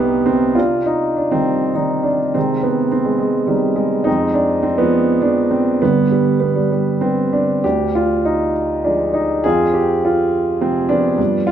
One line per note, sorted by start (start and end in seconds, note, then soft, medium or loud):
0.00 0.54 C2 medium
0.00 0.54 C3 medium
0.00 0.23 G3 medium
0.00 0.27 B3 medium
0.00 0.53 D#4 medium
0.00 0.56 G4 medium
0.00 0.59 D#5 medium
0.00 0.59 C6 loud
0.26 0.55 C4 medium
0.55 2.32 C3 soft
0.55 1.15 D4 medium
0.55 0.84 F4 medium
0.86 1.15 D#4 medium
1.16 1.33 D4 medium
1.31 1.75 D#3 soft
1.31 2.17 G3 medium
1.31 1.74 C4 medium
1.74 2.34 D#3 soft
1.74 2.33 C4 soft
1.74 2.06 D#4 medium
1.74 2.34 D5 soft
2.03 2.32 D4 medium
2.34 4.02 C3 medium
2.34 3.18 D#3 medium
2.34 3.03 G#3 medium
2.34 2.65 C4 medium
2.63 2.93 B3 medium
2.92 3.07 C4 medium
3.05 3.17 G#3 medium
3.19 3.49 G#3 medium
3.47 4.04 D#3 soft
3.47 3.75 G3 medium
3.47 4.04 C4 soft
3.47 4.03 D#4 soft
3.76 4.04 G#3 medium
4.04 5.78 F2 medium
4.04 4.78 G#3 medium
4.04 4.61 C4 medium
4.04 4.35 D#4 medium
4.34 4.65 D4 medium
4.63 4.77 C4 medium
4.78 5.21 F3 medium
4.78 5.21 G#3 medium
4.78 5.24 B3 medium
5.22 5.80 F3 soft
5.22 5.80 G#3 soft
5.22 5.49 C4 soft
5.22 5.53 D4 medium
5.51 5.82 C4 medium
5.82 7.60 G2 medium
5.82 6.69 D3 medium
5.82 6.09 G3 medium
5.82 6.10 B3 medium
6.11 6.42 G3 medium
6.40 6.57 B3 medium
6.55 6.70 G3 medium
6.71 7.00 G3 medium
7.01 7.62 D3 soft
7.01 7.62 G3 soft
7.01 7.34 C4 medium
7.01 7.63 B4 soft
7.33 7.64 D4 medium
7.64 9.41 D2 medium
7.64 8.51 D4 medium
7.64 7.95 G4 medium
7.95 8.23 F4 medium
8.25 8.53 D#4 medium
8.84 9.43 F3 soft
8.84 9.43 G#3 soft
8.84 9.12 D4 medium
9.14 9.45 D#4 medium
9.44 11.16 F2 medium
9.44 10.30 C4 medium
9.44 10.03 F4 medium
9.44 9.75 G#4 loud
9.74 10.05 G4 medium
10.05 10.32 F4 medium
10.61 11.18 C3 soft
10.61 10.89 F3 soft
10.61 11.17 G#3 soft
10.61 10.88 C4 medium
10.89 11.52 F3 medium
10.89 11.52 B3 medium
10.89 11.49 D4 medium
11.18 11.52 G2 medium
11.47 11.52 F4 loud